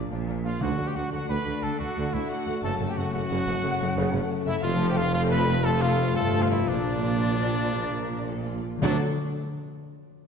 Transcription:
Already playing: A#2 F3 A#3 F4 F5
0.10 A#1 A#2 F3 A#3 D4 F4
0.27 F3 A#3 D4 F4 F5
0.44 F3 A#3 D4 F4 F5
0.60 D2 D3 A3 D4 F#4 F#5
0.78 D2 D3 D4
0.87 G4 G5
0.95 D2 D3 A3 F#4 F#5
1.12 D2 D3 F#4 F#5
1.29 D2 D3 B4 D5 B5
1.45 D2 D3 F#4
1.62 D2 D3 A4 A5
1.79 D2 D3 D4 F#4 F#5
1.96 D2 D3 A3
2.12 D2 D3 E4 F#4 E5
2.29 F#4 D5 F#5
2.46 D2 D3 F#4
2.63 F#1 F#2 C#3 A3 C#4 A4 A5
2.80 F#1 F#2 C#3
2.89 G4 G5
2.96 F#1 F#2 C#3 A3 F#4 F#5
3.13 F#1 F#2 C#3 F#4 A4 F#5
3.30 F#1 F#2 C#3 C#5
3.47 F#1 F#2 C#3 A4
3.63 F#1 F#2 C#3
3.80 F#1 F#2 C#3
3.96 F#1 F#2 C#3 A3
4.13 F#1 F#2 C#3 A4
4.30 C#5
4.46 F#1 F#2 C#3 E4 A4 E5
4.62 F1 F2 F3 A3 C4 F4 A4 F5
4.79 C3
4.89 G4 G5
4.96 A3 F4 F5
5.13 F3 A3 C4 F4 A4 F5
5.30 B4 F5 B5
5.47 F4
5.64 F2 F3 A3 C4 A4 A5
5.80 C3 F4 F5
5.98 A3
6.15 G1 G2 F3 A3 C4 F4 A4 A5
6.32 F5
6.41 F4 F5
6.49 E4 F4 E5
6.67 A#1 A#2 F3 A#3 D4 F4 D5
6.85 F3
7.02 A#3
7.20 F4
7.38 F5
7.47 G4
7.56 F4
7.74 A#2 F4
7.91 F3 A#4
8.28 F4 A4
8.45 F4 F5
8.64 F4
8.76 D3 A3
8.81 D2 D3 F#3 A3 D4 F#4 A4 D5
8.86 D5 F#5

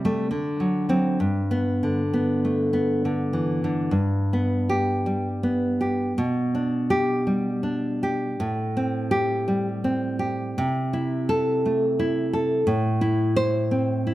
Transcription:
Already playing: C3
0.05 G3 A3
0.31 D3
0.60 F#3
0.89 F#3 C4
1.20 G2
1.51 B3
1.83 D3
2.14 B3
2.45 A3
2.73 B3
3.05 D3
3.33 E3
3.64 D3
3.91 G2
4.33 B3
4.69 G4
5.06 G3
5.43 B3
5.81 G4
6.18 B2
6.55 D4
6.90 G4
7.27 G3
7.63 D4
8.03 G4
8.40 A2
8.77 C4
9.11 G4
9.48 G3
9.84 C4
10.19 G4
10.58 C3
10.93 E4
11.29 A4
11.66 A3
11.99 E4
12.33 A4
12.67 A2
13.01 E4
13.36 C5
13.71 C4
14.07 E4

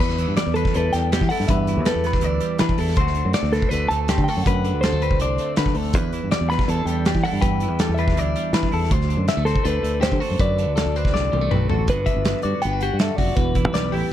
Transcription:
Already playing: D3
0.00 E2 B4
0.09 snare
0.18 E3, closed hi-hat
0.28 G2
0.36 G3 D5, snare, closed hi-hat
0.46 E2
0.54 D4 A4 B4, closed hi-hat
0.65 kick, snare
0.74 E2 E3 A4 B4, closed hi-hat
0.93 E2 G3 G5, snare, closed hi-hat
1.12 B3 G4, snare, closed hi-hat
1.21 E3 D4, kick, snare
1.29 E4 A4 F#5, open hi-hat
1.40 G2, snare
1.48 E2 G2 B4 E5, kick, closed hi-hat
1.67 E3, closed hi-hat
1.76 E2
1.85 G3 A4 B4, snare, closed hi-hat
1.95 E2
2.04 B3 B4, snare, closed hi-hat
2.13 D4, kick, snare
2.21 D2 E3 D5, closed hi-hat
2.40 G3, closed hi-hat
2.58 E3 D4 B4, snare, closed hi-hat
2.69 kick
2.78 E2 E4 A4, open hi-hat
2.88 snare
2.96 D2 D3 A3 C5, kick, closed hi-hat
3.00 C4 F#4
3.07 snare
3.15 D3, closed hi-hat
3.25 F#2
3.33 A3 D5, snare, closed hi-hat
3.43 D2, snare
3.53 C4 A4 B4, snare, closed hi-hat
3.62 kick
3.69 D2 A4 B4, closed hi-hat
3.73 D3
3.88 D2 A3 A5, closed hi-hat
4.08 C4 G4, snare, closed hi-hat
4.18 D3, kick
4.24 G5
4.28 F#4 A4, open hi-hat
4.37 F#2
4.43 F#2 F#5, kick, closed hi-hat
4.47 D2 B4
4.64 D3, closed hi-hat
4.74 D2
4.81 G3 A4 C5, snare, closed hi-hat
4.93 D2 A3
5.02 C4 B4, closed hi-hat
5.11 kick
5.20 C2 D3 D5, closed hi-hat
5.38 A3, closed hi-hat
5.56 D3 B4, snare, closed hi-hat
5.66 kick, snare
5.75 D2 A4, open hi-hat
5.93 E2 B4, kick, closed hi-hat
6.13 E3, closed hi-hat
6.23 G2
6.31 G3 D5, snare, closed hi-hat
6.41 E2
6.50 D4 B4 B5, snare, closed hi-hat
6.59 kick, snare
6.68 E2 E3 A4 A5, closed hi-hat
6.85 E2 G3 G5, closed hi-hat
7.05 D4 G4, snare, closed hi-hat
7.15 E3, kick, snare
7.24 E4 A4 F#5, open hi-hat
7.33 G2
7.41 E2 G2 B4 G5, kick, closed hi-hat
7.60 E3, closed hi-hat
7.70 E2
7.79 G3 A4, snare, closed hi-hat
7.89 E2
7.94 E5, closed hi-hat
7.99 D4 B4
8.08 kick, snare
8.17 D2 E3 D5, closed hi-hat
8.36 G3, closed hi-hat
8.53 E3 D4 B4, snare, closed hi-hat
8.63 kick, snare
8.72 E2 E4 A4, open hi-hat
8.84 snare
8.90 D2 C5, kick, closed hi-hat
9.01 snare
9.09 D3, closed hi-hat
9.17 F#2
9.28 G3 E5, snare, closed hi-hat
9.37 D2 A3
9.45 C4 A4 C5, snare, closed hi-hat
9.55 kick
9.64 D2 D3 A4 B4, closed hi-hat
9.83 D2 A3, closed hi-hat
10.01 C4 G4 C5, snare, closed hi-hat
10.12 D3, kick
10.20 F#4 A4, open hi-hat
10.31 F#2
10.39 D2 F#2 B4 D5, kick, closed hi-hat
10.58 D3, closed hi-hat
10.66 D2
10.76 A3 A4, snare, closed hi-hat
10.86 D2
10.96 C4 B4, closed hi-hat
11.05 kick, snare
11.14 C2 D3 D5, snare
11.32 C2 G3, high tom
11.41 A3
11.51 B1 C4 B4, mid tom
11.70 A1 F#4 A4, floor tom
11.88 G1 G2 D3 B3 D4 F#4 B4, kick, closed hi-hat
12.06 D3 E5, kick, closed hi-hat
12.16 G1
12.25 B3, snare, closed hi-hat
12.42 G2 F#4 D5, closed hi-hat
12.62 G1 B3 B4 G5, closed hi-hat
12.73 D4
12.81 F#4 G4 F#5, closed hi-hat
12.94 G2
12.99 G2 A4 E5, snare, closed hi-hat
13.16 F1 F#2 F#4 D5, kick, open hi-hat
13.36 E1 E2 B4, kick, closed hi-hat
13.55 E3, kick, closed hi-hat
13.65 B1
13.74 G3 D5, snare, closed hi-hat
13.92 A1 E4 G4, open hi-hat

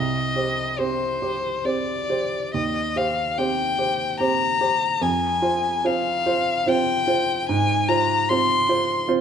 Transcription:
Already playing: C2 D#5
0.36 G4 C5
0.79 C4 G4 C5
1.22 G4 C5
1.65 C4 G4 C5 D5
2.09 G4 C5
2.54 D#2 D#5
2.96 G4 C5 F5
3.38 C4 G4 C5 G5
3.78 G4 C5
4.20 C4 G4 C5 A#5
4.61 G4 C5
5.01 F2 G#5
5.42 F4 C5
5.84 C4 F4 C5 F5
6.26 F4 C5
6.67 C4 F4 C5 G5
7.07 F4 C5
7.49 G#2 G#5
7.88 F4 C5 A#5
8.29 C4 F4 C5 C6
8.69 F4 C5
9.08 C4 F4 C5

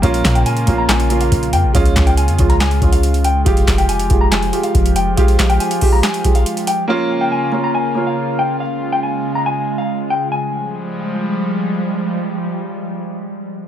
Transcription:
0.02 A#1 C#3 A#3 C#4 F4 F5, kick, closed hi-hat
0.14 closed hi-hat
0.25 A#2, kick, snare, clap, closed hi-hat
0.35 G5, closed hi-hat
0.46 G#5, closed hi-hat
0.57 closed hi-hat
0.66 A#1 A#3 C#4 F4, kick, closed hi-hat
0.78 A#5
0.89 G#5, snare, clap, closed hi-hat
1.00 closed hi-hat
1.09 A#3 C#4 F4, closed hi-hat
1.21 F5, closed hi-hat
1.32 A#1, kick, closed hi-hat
1.43 closed hi-hat
1.53 F2 G5, closed hi-hat
1.64 A#1
1.73 C#2 G#3 C#4 F4 F5, kick, closed hi-hat
1.85 closed hi-hat
1.96 C#2, kick, snare, clap, closed hi-hat
2.07 G5, closed hi-hat
2.17 G#5, closed hi-hat
2.28 F2, closed hi-hat
2.38 C#2 G#3 C#4 F4, kick, closed hi-hat, open hi-hat
2.50 A#5, closed hi-hat
2.60 G#5, snare, clap, closed hi-hat
2.71 closed hi-hat
2.81 C#2 G#3 C#4 F4, kick, closed hi-hat
2.92 F5, closed hi-hat
3.03 closed hi-hat
3.14 closed hi-hat
3.24 G5, closed hi-hat
3.45 F1 F3 G#3 F4 G4 F5, kick, closed hi-hat
3.57 closed hi-hat
3.68 F1, kick, snare, clap, closed hi-hat
3.78 G5, closed hi-hat
3.89 G#5, closed hi-hat
3.99 closed hi-hat
4.09 F1 G#3 F4 G4, kick, closed hi-hat
4.21 A#5
4.32 G#5, snare, clap, closed hi-hat
4.43 closed hi-hat
4.52 G#3 F4 G4, closed hi-hat
4.63 F5, closed hi-hat
4.75 F1, kick, closed hi-hat
4.86 closed hi-hat
4.96 G5, closed hi-hat
5.16 G#3 F4 G4 F5, kick, closed hi-hat
5.28 closed hi-hat
5.39 kick, snare, clap, closed hi-hat
5.50 G5, closed hi-hat
5.60 G#5, closed hi-hat
5.71 closed hi-hat
5.81 G#3 F4 G4, kick, open hi-hat
5.92 A#5
6.03 G#5, snare, clap, closed hi-hat
6.14 closed hi-hat
6.23 G#3 F4 G4, kick, closed hi-hat
6.35 F5, closed hi-hat
6.46 closed hi-hat
6.57 closed hi-hat
6.67 G5, closed hi-hat
6.88 C#3 A#3 C#4 F4 F5
7.21 G5
7.32 G#5
7.52 A#3 C#4 F4
7.64 A#5
7.75 G#5
7.95 A#3 C#4 F4
8.07 F5
8.39 G5
8.60 G#3 F5
8.92 G5
9.03 G#5
9.35 A#5
9.46 G#5
9.78 F5
10.10 G5
10.32 F3 G3 G#3 G#5

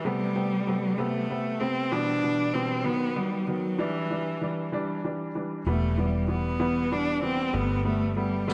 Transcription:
0.04 C3 G3 A3 B3
0.35 C3 A3 B3
0.67 C3 A3 B3
0.98 C3 A3 B3
1.30 C3 A3 B3
1.60 C3 A3 B3 C4
1.91 B2 E3 G3 B3 D4
2.23 B2 E3 G3 B3
2.53 B2 E3 G3 B3 C4
2.84 D#3 F#3 B3
3.16 D#3 F#3 G3 B3
3.47 D#3 F#3 B3
3.78 E3 G3 D4
4.11 E3 G3 D4
4.41 E3 G3 D4
4.72 E3 G3 D4
5.04 E3 G3 D4
5.35 E3 G3 D4
5.66 E1 E3 G3 A3 B3
5.97 E3 G3 B3
6.28 E3 G3 B3
6.59 E3 G3 B3
6.92 E3 G3 B3 D4
7.22 E3 G3 B3 C4
7.53 G1 G3 A3 B3
7.85 G3 A3 B3
8.16 G3 A3 B3
8.48 G3 A3 B3, snare

